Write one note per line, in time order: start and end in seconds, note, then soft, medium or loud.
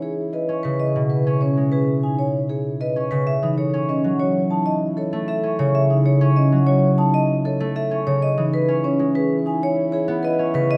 0.00 2.38 E3 medium
0.00 1.56 G#3 medium
0.00 0.47 C#4 medium
0.00 3.08 E4 medium
0.00 0.23 G#4 medium
0.00 0.23 C#5 medium
0.33 0.54 B4 medium
0.33 0.54 D#5 medium
0.49 1.25 C#4 medium
0.63 3.10 C#3 medium
0.63 0.84 B4 medium
0.80 1.00 D#5 medium
0.96 3.30 B2 medium
1.10 1.31 B4 soft
1.10 1.31 B4 medium
1.27 2.95 C#4 medium
1.41 1.62 C#4 medium
1.41 1.62 C#5 medium
1.57 3.30 G#3 medium
1.72 1.93 G#4 medium
1.72 1.93 B4 medium
2.03 2.24 D#4 medium
2.03 2.24 G#5 medium
2.19 2.39 C#5 medium
2.49 2.70 G#4 medium
2.49 2.70 C#5 medium
2.81 3.01 B4 medium
2.81 3.01 D#5 medium
2.96 3.72 C#4 medium
3.11 3.30 C#3 medium
3.11 3.32 B4 medium
3.27 8.03 E4 medium
3.27 3.47 E5 medium
3.42 7.32 E3 medium
3.42 3.63 D#4 medium
3.58 3.78 A4 medium
3.58 3.78 C#5 medium
3.74 5.42 C#4 medium
3.89 4.09 C#4 medium
3.89 4.09 D#5 medium
4.04 6.51 F#3 medium
4.20 4.40 F#4 medium
4.20 4.40 C#5 medium
4.51 4.71 D#4 medium
4.51 4.71 A5 medium
4.66 4.86 D#5 medium
4.97 5.17 A4 medium
4.97 5.18 C#5 medium
5.13 7.59 A3 medium
5.28 5.49 A4 medium
5.28 5.48 E5 medium
5.43 6.20 C#4 medium
5.59 8.05 C#3 medium
5.59 5.79 C#5 medium
5.75 5.95 E5 medium
5.91 6.11 D#4 medium
6.06 6.26 A4 medium
6.06 6.26 C#5 medium
6.21 7.90 C#4 medium
6.36 6.57 C#4 medium
6.36 6.57 D#5 medium
6.52 8.25 F#3 medium
6.67 6.88 F#4 medium
6.67 6.87 C#5 medium
6.98 7.19 D#4 medium
6.98 7.18 A5 medium
7.14 7.34 D#5 medium
7.45 7.65 A4 medium
7.45 7.65 C#5 medium
7.60 8.25 A3 medium
7.76 7.96 A4 medium
7.76 7.96 E5 medium
7.91 8.67 C#4 medium
8.07 8.25 C#3 medium
8.07 8.27 C#5 medium
8.22 10.77 E4 medium
8.22 8.42 D#5 medium
8.38 10.77 E3 medium
8.38 8.58 D#4 medium
8.54 8.73 B4 medium
8.68 10.38 C#4 medium
8.84 9.04 C#4 medium
8.84 9.04 C#5 medium
8.99 10.77 G#3 medium
9.15 9.35 G#4 medium
9.15 9.35 B4 medium
9.46 9.66 D#4 medium
9.46 9.66 G#5 medium
9.63 9.82 C#5 medium
9.92 10.13 G#4 medium
9.92 10.12 C#5 medium
10.08 10.77 B3 medium
10.23 10.43 B4 medium
10.23 10.44 D#5 medium
10.39 10.77 C#4 medium
10.54 10.77 C#3 medium
10.54 10.75 B4 medium
10.71 10.77 D#5 medium